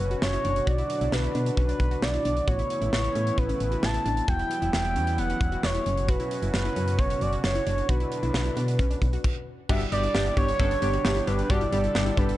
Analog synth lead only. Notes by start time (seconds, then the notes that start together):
Already playing: B4
0.22 C#5
0.67 D5
1.12 B4
1.58 B4
2.03 D5
2.48 C#5
2.93 C#5
3.38 B4
3.83 A5
4.28 G5
4.73 G5
5.18 F#5
5.64 C#5
6.09 B4
6.54 B4
6.99 C#5
7.21 D5
7.44 C#5
7.89 B4
9.69 E5
9.92 D5
10.37 C#5
11.27 B4
11.50 D5
12.17 B4